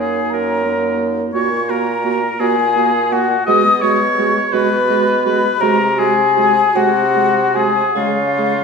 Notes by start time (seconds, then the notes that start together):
Already playing: F#2 A#3 D#4
0.00 G#4 G#5
0.30 F#2 A#4 A#5
0.66 A#3 D#4
1.34 A#2 A#3 F#4 C#5 C#6
1.69 A#3 F#4 A#4 A#5
2.04 A#3 F#4
2.40 A#2 A#3 F#4 G#4 G#5
2.76 A#3 F#4
3.12 A#3 F#4 F#5
3.46 B2 G#3 F#4 D#5 D#6
3.81 G#3 F#4 C#5 C#6
4.17 G#3 F#4
4.52 B2 G#3 F#4 B4 B5
4.90 G#3 F#4
5.25 G#3 F#4 B4 B5
5.60 C3 G#3 F#4 A#4 A#5
5.98 G#3 F#4 G#4 G#5
6.36 G#3 F#4
6.75 C3 G#3 F#4 F#5
7.14 G#3 F#4
7.54 G#3 F#4 G#4 G#5
7.94 C#3 G#3 F4 G#4 F5
8.38 G#3 G#4